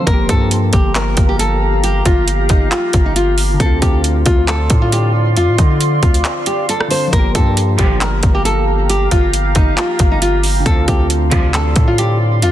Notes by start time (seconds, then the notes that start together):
0.02 F3
0.07 G1 A#3 G4 A#4 F5 A#5, kick, closed hi-hat
0.13 G4
0.29 G2 A4, kick, closed hi-hat
0.51 closed hi-hat
0.73 G1 G4, kick, closed hi-hat
0.95 A#4, clap, closed hi-hat
1.17 G1, kick, closed hi-hat
1.29 G4
1.39 A4, closed hi-hat
1.84 G4, closed hi-hat
2.06 G1 F4, kick, closed hi-hat
2.28 closed hi-hat
2.49 G1 D#4, kick, closed hi-hat
2.71 F4, clap, closed hi-hat
2.93 G1, kick, closed hi-hat
3.06 D#4
3.16 F4, closed hi-hat
3.38 open hi-hat
3.54 D3
3.60 D2 C4 F4 A4 D5 C6, kick, closed hi-hat
3.66 F4
3.82 D2 G4, kick, closed hi-hat
4.04 closed hi-hat
4.26 D2 F4, kick, closed hi-hat
4.48 A4, clap, closed hi-hat
4.70 A2, kick, closed hi-hat
4.82 F4
4.92 G4, closed hi-hat
5.36 F2 F4, closed hi-hat
5.48 A2
5.58 D3 D#4, kick, closed hi-hat
5.81 closed hi-hat
6.03 D2 F4, kick, closed hi-hat
6.14 closed hi-hat
6.25 cross-stick, clap, closed hi-hat
6.46 G4, closed hi-hat
6.69 A4, closed hi-hat
6.81 cross-stick
6.88 D3 C4 C5, open hi-hat
6.94 F4
7.08 F3
7.13 G1 A#3 G4 A#4 F5 A#5, kick, closed hi-hat
7.19 G4
7.35 G2 A4, kick, closed hi-hat
7.57 closed hi-hat
7.79 G1 A#2 D3 F3 G4, kick, closed hi-hat
8.01 A#4, clap, closed hi-hat
8.23 G1, kick, closed hi-hat
8.35 G4
8.45 A4, closed hi-hat
8.89 G4, closed hi-hat
9.11 G1 F4, kick, closed hi-hat
9.33 closed hi-hat
9.55 G1 D#4, kick, closed hi-hat
9.77 F4, clap, closed hi-hat
9.99 G1, kick, closed hi-hat
10.12 D#4
10.22 F4, closed hi-hat
10.43 open hi-hat
10.60 D3
10.66 D2 C4 F4 A4 D5 C6, kick, closed hi-hat
10.71 F4
10.88 D2 G4, kick, closed hi-hat
11.10 closed hi-hat
11.31 D2 C3 D3 F3 F4, kick, closed hi-hat
11.54 A4, clap, closed hi-hat
11.76 A2, kick, closed hi-hat
11.88 F4
11.98 G4, closed hi-hat
12.42 F2 F4, closed hi-hat